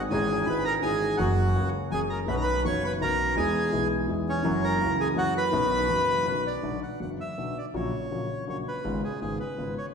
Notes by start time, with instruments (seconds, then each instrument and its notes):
Already playing: upright bass G#1, grand piano G#1 G#2 G#3 C4 G#4
0.10 grand piano G#1 G#2 E3 C#4 D#4, upright bass G#1, bandoneon G#4 G#5
0.14 grand piano G#4
0.46 grand piano G#1 G#2 E3 C#4 D#4 G#4, upright bass G#1, bandoneon B4 B5
0.65 bandoneon A#4 A#5
0.82 upright bass G#1, grand piano G#1 G#2 E3 C#4 D#4, bandoneon G#4 G#5
0.86 grand piano G#4
1.17 upright bass F#1, grand piano F#2 F#3 A#3 C#4, bandoneon F#4 F#5
1.22 grand piano G#4
1.54 upright bass C#2, grand piano C#2 C#3 F#3 A#3 C#4 G#4
1.90 upright bass F#1, grand piano F#2 F#3 A#3 C#4 G#4, bandoneon G#4 G#5
2.10 bandoneon A#4 A#5
2.26 upright bass B1, grand piano B1 B2 D#3 B3 C#4, bandoneon B5
2.30 grand piano F#4, bandoneon B4
2.37 bandoneon A#5
2.41 bandoneon B4 B5
2.63 upright bass F#1, grand piano F#1 F#2 D#3 B3 C#4 F#4, bandoneon C#5 C#6
2.84 bandoneon B4 B5
3.00 grand piano B1 B2 D#3 B3 C#4 F#4, upright bass B1, bandoneon A#4 A#5
3.35 grand piano E2 E3 G#3 B3, upright bass E2, bandoneon G#4 G#5
3.39 grand piano G#4
3.71 grand piano B1 B2 E3 G#3 B3, upright bass B1
3.75 grand piano G#4
4.08 grand piano E2 E3 G#3 B3 G#4, upright bass E2
4.29 bandoneon C#4 C#5
4.43 upright bass F#1, grand piano F#2 E3 F#3 A#3 C#4
4.47 grand piano F#4
4.64 bandoneon A#4 A#5
4.79 upright bass C#2, grand piano C#2 C#3 E3 A#3 C#4
4.83 grand piano F#4
5.01 bandoneon G#4 G#5
5.14 upright bass F#1, grand piano F#2 E3 F#3 A#3 C#4, bandoneon F#4 F#5
5.19 grand piano F#4
5.37 bandoneon B4 B5
5.51 grand piano B1 B2 D#3 B3 C#4, upright bass B1
5.55 grand piano F#4
5.88 upright bass F#1, grand piano F#1 F#2 D#3 B3 C#4 F#4
6.24 grand piano B1 B2 D#3 B3 C#4, upright bass B1, bandoneon B4
6.29 grand piano F#4
6.47 bandoneon D5
6.63 upright bass B1, grand piano B1 B2 D3 F#3 B3 F#4
6.83 bandoneon F#5
7.00 upright bass F#1, grand piano F#1 F#2 D3 F#3 B3 F#4, bandoneon F#5
7.20 bandoneon E5
7.38 upright bass B1, grand piano B1 B2 D3 F#3 B3 F#4
7.58 bandoneon D5
7.74 grand piano A#1 A#2 C#3 F#3 A#3 F#4, upright bass A#1, bandoneon C#5
8.11 upright bass A#1, grand piano A#1 A#2 C#3 F#3 A#3 F#4
8.47 grand piano A#1 A#2 C#3 F#3 A#3 F#4, upright bass A#1, bandoneon C#5
8.68 bandoneon B4
8.84 grand piano G#1 G#2 C#3 G#3 B3 F4, upright bass G#1
9.04 bandoneon G#4
9.21 upright bass G#1, grand piano G#1 G#2 C#3 G#3 B3 F4, bandoneon G#4
9.40 bandoneon B4
9.58 upright bass G#1, grand piano G#1 G#2 C#3 G#3 B3 F4
9.78 bandoneon C#5